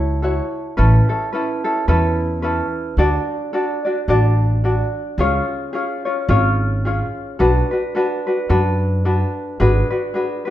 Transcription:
0.00 0.39 C#2 medium
0.00 0.23 E4 medium
0.00 0.22 F#4 medium
0.00 0.22 A4 medium
0.00 0.24 C#5 loud
0.22 0.78 E4 medium
0.22 0.77 F#4 medium
0.22 0.77 A4 medium
0.22 0.77 C#5 medium
0.77 0.99 A1 medium
0.77 1.09 C#4 medium
0.77 1.09 E4 medium
0.77 1.08 A4 medium
0.77 1.08 B4 medium
1.09 1.32 C#4 soft
1.09 1.33 E4 soft
1.09 1.32 A4 medium
1.33 1.64 C#4 medium
1.33 1.64 E4 medium
1.33 1.63 A4 medium
1.33 1.64 B4 medium
1.64 1.87 C#4 soft
1.64 1.87 E4 medium
1.64 1.87 A4 medium
1.88 2.59 E2 medium
1.88 2.42 C#4 medium
1.88 2.43 E4 medium
1.88 2.44 A4 medium
1.88 2.41 B4 medium
2.42 2.98 C#4 medium
2.42 2.98 E4 medium
2.42 2.98 A4 medium
2.42 2.97 B4 medium
2.97 3.18 D2 medium
2.97 3.53 D4 medium
2.97 3.53 F#4 medium
2.97 3.52 A4 medium
2.97 3.53 D5 medium
3.53 3.85 D4 medium
3.53 3.85 F#4 medium
3.53 3.84 A4 medium
3.53 3.84 D5 medium
3.85 4.08 D4 soft
3.85 4.08 F#4 medium
3.85 4.08 D5 soft
4.08 4.80 A1 medium
4.08 4.63 D4 medium
4.08 4.64 F#4 medium
4.08 4.63 A4 medium
4.08 4.64 D5 medium
4.64 5.19 D4 medium
4.64 5.19 F#4 medium
4.64 5.19 A4 medium
4.64 5.19 D5 medium
5.18 5.38 C#2 medium
5.18 5.72 C#4 medium
5.18 5.73 F4 medium
5.18 5.72 G#4 medium
5.18 5.74 C#5 medium
5.73 6.05 C#4 medium
5.73 6.05 F4 medium
5.73 6.05 G#4 medium
5.73 6.04 C#5 medium
6.05 6.28 C#4 soft
6.05 6.28 F4 soft
6.05 6.29 C#5 medium
6.29 7.00 G#1 loud
6.29 6.84 C#4 medium
6.29 6.84 F4 medium
6.29 6.84 G#4 medium
6.29 6.85 C#5 medium
6.85 7.39 C#4 medium
6.85 7.40 F4 medium
6.85 7.39 G#4 medium
6.85 7.40 C#5 medium
7.39 7.60 B1 medium
7.39 7.71 D4 medium
7.39 7.71 F#4 medium
7.39 7.71 A4 medium
7.39 7.70 B4 medium
7.71 7.95 D4 soft
7.71 7.95 F#4 soft
7.71 7.94 B4 medium
7.95 8.27 D4 medium
7.95 8.27 F#4 medium
7.95 8.26 A4 medium
7.95 8.26 B4 medium
8.27 8.49 D4 soft
8.27 8.49 F#4 medium
8.27 8.49 B4 medium
8.49 9.22 F#2 medium
8.49 9.05 D4 medium
8.49 9.05 F#4 medium
8.49 9.04 A4 medium
8.49 9.06 B4 medium
9.05 9.60 D4 medium
9.05 9.60 F#4 medium
9.05 9.59 A4 medium
9.05 9.61 B4 medium
9.60 9.81 G#1 medium
9.60 9.92 D4 medium
9.60 9.90 F#4 medium
9.60 9.92 G#4 medium
9.60 9.89 B4 medium
9.91 10.14 D4 soft
9.91 10.14 F#4 soft
9.91 10.15 B4 medium
10.14 10.46 D4 medium
10.14 10.46 F#4 medium
10.14 10.46 G#4 medium
10.14 10.44 B4 medium
10.45 10.50 F#4 medium
10.45 10.50 B4 medium

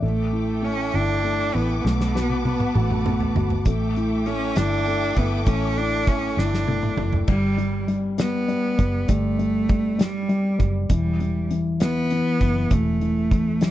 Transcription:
0.02 0.89 A1 medium
0.02 0.61 A3 medium
0.02 0.66 A3 medium
0.02 1.82 A4 medium
0.02 1.82 E5 medium
0.02 1.82 G5 medium
0.02 3.62 D6 medium
0.33 0.92 E4 soft
0.62 1.22 A3 soft
0.62 0.96 C#4 medium
0.93 1.51 G1 medium
0.93 1.56 D4 medium
0.93 1.53 E4 medium
1.24 1.83 A3 soft
1.55 1.83 A1 medium
1.55 1.78 B3 medium
1.55 1.84 E4 soft
1.80 1.86 B3 medium
1.80 3.64 A5 medium
1.85 2.71 B1 medium
1.85 2.16 A3 medium
1.85 2.44 B3 medium
1.85 3.64 B4 medium
1.85 3.64 F#5 medium
1.85 snare soft
2.01 snare soft
2.15 2.44 B3 medium
2.15 2.74 F#4 soft
2.15 snare medium
2.30 high tom soft
2.45 2.76 B3 medium
2.45 3.05 B3 soft
2.45 high tom medium
2.60 mid tom medium
2.75 3.32 A1 medium
2.75 3.43 A3 medium
2.75 3.35 F#4 medium
2.75 mid tom medium
2.90 mid tom medium
3.06 3.64 B3 soft
3.06 mid tom medium
3.20 floor tom medium
3.35 3.64 G1 medium
3.35 3.65 F#4 medium
3.35 floor tom medium
3.50 floor tom medium
3.65 4.52 A1 medium
3.65 4.28 A3 medium
3.65 4.26 A3 medium
3.65 7.25 A4 medium
3.65 7.25 E5 medium
3.65 7.25 G5 medium
3.65 7.24 D6 medium
3.65 kick medium
3.65 closed hi-hat medium
3.96 4.55 E4 soft
3.96 closed hi-hat soft
4.26 4.86 A3 soft
4.26 4.58 C#4 medium
4.26 closed hi-hat soft
4.56 5.13 G1 medium
4.56 5.19 D4 medium
4.56 5.16 E4 medium
4.56 snare medium
4.56 closed hi-hat medium
4.86 5.46 A3 soft
4.86 closed hi-hat soft
5.16 5.45 G1 medium
5.16 5.46 B3 medium
5.16 5.76 E4 soft
5.16 kick medium
5.16 closed hi-hat soft
5.46 6.33 A1 medium
5.46 6.06 A3 medium
5.46 5.79 C#4 medium
5.46 kick loud
5.46 closed hi-hat medium
5.77 6.09 D4 medium
5.77 6.36 E4 medium
5.77 closed hi-hat soft
6.07 6.66 A3 soft
6.07 6.40 C#4 medium
6.07 kick medium
6.07 closed hi-hat soft
6.37 6.94 G1 medium
6.37 7.06 D4 medium
6.37 6.96 E4 medium
6.37 snare medium
6.54 snare soft
6.67 7.26 A3 soft
6.67 high tom medium
6.83 mid tom medium
6.97 7.26 F#1 medium
6.97 7.27 E4 medium
6.97 mid tom medium
7.13 floor tom medium
7.27 8.75 G1 medium
7.27 7.56 G3 medium
7.27 7.85 G3 medium
7.27 kick loud
7.27 crash medium
7.58 7.86 G3 medium
7.58 closed hi-hat soft
7.88 8.17 G3 soft
7.88 closed hi-hat soft
8.18 8.47 G3 medium
8.18 9.12 B3 medium
8.18 snare medium
8.18 closed hi-hat medium
8.48 8.77 G3 medium
8.48 closed hi-hat soft
8.78 9.07 F#1 medium
8.78 9.07 G3 medium
8.78 kick medium
8.78 closed hi-hat soft
9.08 10.56 G1 medium
9.08 9.37 G3 medium
9.08 10.04 A3 medium
9.08 kick loud
9.08 closed hi-hat medium
9.39 9.67 G3 medium
9.39 closed hi-hat soft
9.69 9.97 G3 medium
9.69 kick medium
9.69 closed hi-hat soft
9.98 10.27 G3 medium
9.98 snare medium
9.98 closed hi-hat medium
10.03 10.69 G3 medium
10.29 10.57 G3 medium
10.29 closed hi-hat soft
10.59 10.88 F#1 medium
10.59 10.89 G3 medium
10.59 kick medium
10.59 closed hi-hat soft
10.89 12.37 E1 loud
10.89 11.19 E3 medium
10.89 11.48 G3 medium
10.89 kick loud
10.89 closed hi-hat medium
11.20 11.49 E3 soft
11.20 closed hi-hat soft
11.51 11.81 E3 soft
11.51 closed hi-hat soft
11.80 12.10 E3 medium
11.80 12.74 B3 loud
11.80 snare medium
11.80 closed hi-hat medium
12.10 12.40 E3 medium
12.10 closed hi-hat soft
12.41 12.69 F#1 medium
12.41 12.71 E3 medium
12.41 kick medium
12.41 closed hi-hat soft
12.71 13.71 E1 loud
12.71 13.00 E3 medium
12.71 13.65 A3 medium
12.71 kick loud
12.71 closed hi-hat medium
13.01 13.30 E3 medium
13.01 closed hi-hat soft
13.31 13.60 E3 soft
13.31 kick medium
13.31 closed hi-hat soft
13.61 13.71 E3 medium
13.61 13.71 G3 medium
13.61 snare medium
13.61 closed hi-hat medium

